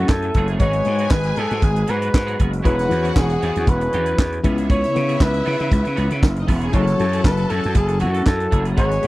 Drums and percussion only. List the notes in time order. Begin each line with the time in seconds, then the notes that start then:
0.09 kick, snare, clap
0.22 closed hi-hat
0.34 kick, closed hi-hat
0.48 closed hi-hat
0.59 kick, closed hi-hat
0.73 closed hi-hat
0.85 closed hi-hat
0.98 closed hi-hat
1.11 kick, snare, clap
1.23 closed hi-hat
1.36 closed hi-hat
1.50 closed hi-hat
1.62 kick, closed hi-hat
1.76 closed hi-hat
1.87 closed hi-hat
2.02 closed hi-hat
2.14 kick, snare, clap
2.28 closed hi-hat
2.39 kick, closed hi-hat
2.53 closed hi-hat
2.65 kick, closed hi-hat
2.79 snare, closed hi-hat
2.91 closed hi-hat
3.05 closed hi-hat
3.16 kick, snare, clap
3.30 closed hi-hat
3.42 closed hi-hat
3.56 closed hi-hat
3.67 kick, closed hi-hat
3.81 closed hi-hat
3.93 closed hi-hat
4.06 closed hi-hat
4.19 kick, snare, clap
4.32 closed hi-hat
4.44 kick, closed hi-hat
4.58 closed hi-hat
4.70 kick, closed hi-hat
4.84 snare, closed hi-hat
4.96 closed hi-hat
5.09 closed hi-hat
5.20 kick, snare, clap
5.34 closed hi-hat
5.45 open hi-hat
5.60 closed hi-hat
5.72 kick, closed hi-hat
5.85 closed hi-hat
5.97 closed hi-hat
6.10 closed hi-hat
6.23 kick, snare, clap
6.36 closed hi-hat
6.48 kick, open hi-hat
6.61 closed hi-hat
6.73 kick, closed hi-hat
6.87 snare, closed hi-hat
6.99 closed hi-hat
7.13 closed hi-hat
7.24 kick, snare, clap
7.37 closed hi-hat
7.50 closed hi-hat
7.64 closed hi-hat
7.75 kick, closed hi-hat
7.88 closed hi-hat
8.00 closed hi-hat
8.14 closed hi-hat
8.26 kick, snare, clap
8.40 closed hi-hat
8.52 kick, closed hi-hat
8.65 closed hi-hat
8.77 kick, closed hi-hat
8.91 snare, closed hi-hat
9.03 closed hi-hat